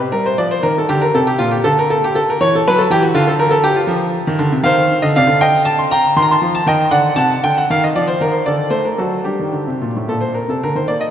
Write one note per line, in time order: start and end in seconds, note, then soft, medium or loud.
0.00 0.11 G4 medium
0.12 0.30 G3 medium
0.12 0.24 A#4 loud
0.26 0.38 C5 medium
0.38 0.56 F3 medium
0.38 0.50 D5 loud
0.51 0.63 C5 loud
0.63 0.81 D#3 medium
0.63 0.75 A#4 loud
0.78 0.89 A4 medium
0.89 1.07 D3 medium
0.89 1.01 G4 loud
1.02 1.14 A#4 loud
1.15 1.33 C3 medium
1.15 1.27 A4 loud
1.27 1.39 G4 loud
1.39 1.57 A#2 medium
1.39 1.51 F4 loud
1.51 1.64 G4 medium
1.64 2.19 D3 medium
1.64 1.77 A4 loud
1.79 1.90 A#4 loud
1.90 2.02 A4 loud
2.04 2.15 G4 loud
2.15 2.27 A4 loud
2.30 2.41 A#4 medium
2.41 2.58 E3 medium
2.41 2.52 C#5 loud
2.55 2.66 A4 medium
2.68 2.84 F#3 medium
2.68 2.78 B4 loud
2.79 2.90 A4 loud
2.90 3.08 E3 loud
2.90 3.03 G4 loud
3.02 3.14 F#4 medium
3.14 3.68 D3 loud
3.14 3.27 F4 loud
3.27 3.39 A4 loud
3.39 3.52 A#4 loud
3.51 3.64 A4 loud
3.64 3.76 G4 loud
3.76 3.89 F4 medium
3.87 4.15 F3 loud
4.27 4.39 D#3 medium
4.39 4.51 D3 loud
4.52 4.63 C3 medium
4.63 4.90 D#3 medium
4.63 4.99 C5 loud
4.63 4.95 F5 loud
5.02 5.14 D3 medium
5.02 5.14 D#5 medium
5.16 5.27 C3 loud
5.16 5.39 D5 medium
5.16 5.40 F5 loud
5.27 5.91 D3 medium
5.41 5.64 D#5 medium
5.41 5.65 G5 loud
5.65 5.78 A5 loud
5.79 5.91 C6 medium
5.91 6.15 G5 loud
5.91 6.12 A#5 loud
6.16 6.34 D#3 medium
6.16 6.23 C6 loud
6.22 6.29 A#5 loud
6.31 6.53 A5 medium
6.31 6.54 C6 loud
6.42 6.59 F3 medium
6.55 6.66 A5 loud
6.66 6.84 D#3 medium
6.66 6.90 D#5 medium
6.66 6.91 G5 loud
6.91 7.09 D3 medium
6.91 7.14 D5 medium
6.91 7.16 F#5 loud
7.16 7.34 C3 medium
7.16 7.40 F#5 medium
7.16 7.41 A5 loud
7.43 7.61 D3 medium
7.43 7.55 G5 loud
7.58 7.69 F#5 loud
7.70 7.88 D#3 medium
7.70 7.82 F5 loud
7.84 7.95 D#5 medium
7.95 8.13 F3 medium
7.95 8.07 D5 loud
8.07 8.20 C5 loud
8.21 8.39 D#3 medium
8.21 8.33 A#4 medium
8.31 8.44 C5 medium
8.46 8.65 D3 medium
8.46 8.71 A4 medium
8.46 8.68 D5 medium
8.70 8.90 A3 medium
8.70 8.84 C5 medium
8.85 8.98 A#4 medium
8.98 9.18 F#3 medium
8.98 9.24 F#4 medium
8.98 9.25 A4 medium
9.24 9.37 G3 medium
9.24 10.58 D4 medium
9.24 10.40 G4 medium
9.39 9.52 D#3 medium
9.52 9.65 D3 medium
9.67 9.80 C3 medium
9.82 9.94 A#2 medium
9.96 10.08 A2 medium
10.08 10.37 A#2 medium
10.08 10.21 A4 medium
10.21 10.34 C5 medium
10.34 10.48 A#4 medium
10.48 10.61 C3 medium
10.48 10.62 A4 medium
10.63 10.75 D3 medium
10.63 10.76 A#4 medium
10.75 10.87 D#3 medium
10.75 10.88 C5 medium
10.88 11.11 A#3 medium
10.88 11.01 D5 medium
11.00 11.11 D#5 medium